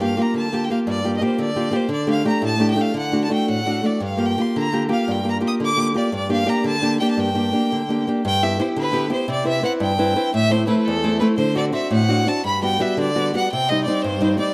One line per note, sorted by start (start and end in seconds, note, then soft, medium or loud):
0.00 0.18 G2 medium
0.00 0.16 A#3 soft
0.00 0.16 F4 soft
0.00 0.17 G4 medium
0.00 0.23 F5 medium
0.17 0.46 A#3 medium
0.17 0.46 F4 soft
0.17 0.47 G4 soft
0.22 0.37 A#5 medium
0.34 0.69 D3 medium
0.34 0.66 A5 medium
0.52 0.69 A#3 soft
0.52 0.69 F4 soft
0.52 0.70 G4 medium
0.64 0.70 G5 medium
0.70 0.99 A#3 soft
0.70 0.99 F4 soft
0.70 0.99 G4 medium
0.70 0.79 F5 medium
0.87 1.21 G2 medium
0.87 1.13 D5 medium
1.04 1.20 A#3 soft
1.04 1.20 F4 soft
1.04 1.21 G4 soft
1.17 1.24 D#5 medium
1.21 1.50 A#3 medium
1.21 1.50 F4 soft
1.21 1.50 G4 medium
1.21 1.40 C5 medium
1.38 1.73 D3 medium
1.38 1.78 D5 medium
1.55 1.69 A#3 soft
1.55 1.70 F4 soft
1.55 1.71 G4 medium
1.71 1.86 A#3 soft
1.71 1.87 F4 soft
1.71 1.87 G4 medium
1.76 1.91 C5 medium
1.89 2.24 D3 medium
1.89 2.08 D5 medium
2.07 2.24 A3 soft
2.07 2.24 D4 soft
2.07 2.24 G4 soft
2.07 2.26 F5 medium
2.25 2.54 A3 medium
2.25 2.54 D4 soft
2.25 2.54 G4 medium
2.25 2.43 A#5 medium
2.42 2.77 A2 medium
2.42 2.69 A5 medium
2.59 2.74 A3 medium
2.59 2.75 D4 soft
2.59 2.76 G4 medium
2.71 2.83 G5 medium
2.76 2.91 A3 medium
2.76 2.91 D4 soft
2.76 2.92 G4 medium
2.81 2.98 F5 medium
2.94 3.30 D3 medium
2.98 3.22 F#5 medium
3.12 3.29 A3 soft
3.12 3.29 D4 soft
3.12 3.30 F#4 soft
3.24 3.32 A5 medium
3.30 3.59 A3 soft
3.30 3.60 D4 soft
3.30 3.60 F#4 medium
3.30 3.49 G5 medium
3.48 3.84 A2 medium
3.48 3.87 F#5 medium
3.65 3.82 A3 soft
3.65 3.83 D4 soft
3.65 3.83 F#4 medium
3.83 3.98 A3 soft
3.83 3.99 D4 soft
3.83 3.99 F#4 soft
3.83 4.04 D5 medium
4.00 4.37 G2 medium
4.00 4.27 F5 medium
4.17 4.37 A#3 soft
4.17 4.38 F4 soft
4.17 4.37 G4 soft
4.26 4.43 G5 medium
4.38 4.67 A#3 soft
4.38 4.67 F4 soft
4.38 4.67 G4 medium
4.38 4.58 C6 medium
4.56 4.91 D3 medium
4.56 4.82 A#5 loud
4.73 4.88 A#3 soft
4.73 4.88 F4 soft
4.73 4.88 G4 medium
4.89 5.18 A#3 medium
4.89 5.18 F4 soft
4.89 5.18 G4 medium
4.89 5.13 F5 medium
5.08 5.42 G2 medium
5.08 5.28 G5 medium
5.24 5.39 A#3 soft
5.24 5.40 F4 soft
5.24 5.40 G4 soft
5.30 5.37 A#5 medium
5.40 5.70 A#3 medium
5.40 5.70 F4 soft
5.40 5.70 G4 medium
5.47 5.54 D#6 medium
5.60 5.94 D3 medium
5.65 5.87 D6 loud
5.76 5.93 A#3 medium
5.76 5.93 F4 soft
5.76 5.95 G4 medium
5.94 6.09 A#3 soft
5.94 6.09 F4 soft
5.94 6.10 G4 medium
5.94 6.13 D5 medium
6.12 6.46 G2 medium
6.12 6.30 D5 medium
6.29 6.45 A#3 soft
6.29 6.46 D4 soft
6.29 6.45 G4 medium
6.29 6.51 F5 loud
6.46 6.75 A#3 medium
6.46 6.75 D4 medium
6.46 6.75 G4 medium
6.46 6.66 A#5 medium
6.64 6.98 D3 medium
6.64 6.99 A5 loud
6.82 7.00 A#3 soft
6.82 7.00 D4 soft
6.82 7.01 G4 medium
7.00 7.29 A#3 medium
7.00 7.28 D4 medium
7.00 7.29 G4 medium
7.00 7.10 G5 medium
7.11 7.21 A5 medium
7.17 7.51 G2 medium
7.17 8.08 G5 medium
7.34 7.51 A#3 soft
7.34 7.52 D4 soft
7.34 7.52 G4 soft
7.52 7.81 A#3 medium
7.52 7.82 D4 soft
7.52 7.82 G4 medium
7.72 8.07 D3 medium
7.89 8.06 A#3 soft
7.89 8.07 D4 soft
7.89 8.07 G4 soft
8.07 8.21 A#3 soft
8.07 8.22 D4 soft
8.07 8.22 G4 medium
8.25 8.59 G2 medium
8.25 8.44 G5 loud
8.43 8.58 B3 soft
8.43 8.58 E4 soft
8.43 8.58 G4 soft
8.43 8.60 E5 medium
8.59 8.88 B3 medium
8.59 8.88 E4 soft
8.59 8.88 G4 medium
8.59 8.68 C5 medium
8.76 9.11 D3 medium
8.76 9.11 B4 loud
8.92 9.08 B3 medium
8.92 9.09 E4 soft
8.92 9.09 G4 medium
9.10 9.25 B3 medium
9.10 9.25 E4 soft
9.10 9.25 G4 medium
9.10 9.29 C5 medium
9.28 9.63 C3 medium
9.28 9.47 D5 medium
9.44 9.61 C4 soft
9.44 9.62 E4 soft
9.44 9.62 B4 medium
9.48 9.64 E5 loud
9.62 9.91 C4 soft
9.62 9.91 E4 medium
9.62 9.92 B4 medium
9.62 9.73 F#5 medium
9.80 10.15 G2 medium
9.80 10.31 G5 loud
9.98 10.15 C4 medium
9.98 10.15 E4 medium
9.98 10.15 B4 medium
10.16 10.30 C4 medium
10.16 10.30 E4 soft
10.16 10.30 B4 medium
10.34 10.68 A2 medium
10.34 10.53 E5 loud
10.50 10.66 A3 soft
10.50 10.66 C4 soft
10.50 10.67 E4 medium
10.50 10.67 C5 loud
10.67 10.96 A3 medium
10.67 10.96 C4 medium
10.67 10.96 E4 medium
10.67 10.78 B4 medium
10.78 10.87 B4 medium
10.85 11.21 E2 medium
10.85 11.19 A4 loud
11.04 11.20 A3 medium
11.04 11.20 C4 soft
11.04 11.21 E4 medium
11.19 11.35 A3 medium
11.19 11.35 C4 soft
11.19 11.36 E4 medium
11.19 11.28 B4 medium
11.37 11.72 D3 medium
11.37 11.54 C5 loud
11.54 11.71 C4 medium
11.54 11.72 D4 soft
11.54 11.72 F#4 medium
11.54 11.65 D5 medium
11.72 12.01 C4 medium
11.72 12.02 D4 soft
11.72 12.01 F#4 medium
11.72 11.90 E5 medium
11.91 12.25 A2 medium
11.91 12.29 F#5 loud
12.08 12.25 C4 medium
12.08 12.25 D4 soft
12.08 12.26 F#4 medium
12.26 12.40 C4 medium
12.26 12.41 D4 soft
12.26 12.41 F#4 medium
12.26 12.45 A5 medium
12.44 12.79 G2 medium
12.44 12.61 B5 loud
12.62 12.79 G3 medium
12.62 12.78 B3 soft
12.62 12.79 F#4 medium
12.62 12.83 G5 loud
12.80 13.08 G3 medium
12.80 13.08 B3 soft
12.80 13.09 F#4 medium
12.80 12.98 E5 medium
12.97 13.32 D3 medium
12.97 13.32 D5 loud
13.15 13.33 G3 medium
13.15 13.33 B3 soft
13.15 13.34 F#4 medium
13.34 13.48 G3 soft
13.34 13.48 B3 soft
13.34 13.48 F#4 medium
13.34 13.51 F#5 medium
13.52 13.86 C3 medium
13.52 13.71 G5 loud
13.69 13.87 G3 soft
13.69 13.86 C4 soft
13.69 13.87 D#4 medium
13.69 13.83 D#5 loud
13.84 14.15 G3 medium
13.84 14.04 D5 medium
13.88 14.15 C4 soft
13.88 14.15 D#4 medium
14.02 14.37 G2 medium
14.02 14.37 C5 loud
14.21 14.37 G3 medium
14.21 14.37 C4 soft
14.21 14.38 D#4 medium
14.38 14.51 G3 medium
14.38 14.52 C4 medium
14.38 14.52 D#4 medium
14.38 14.54 D5 loud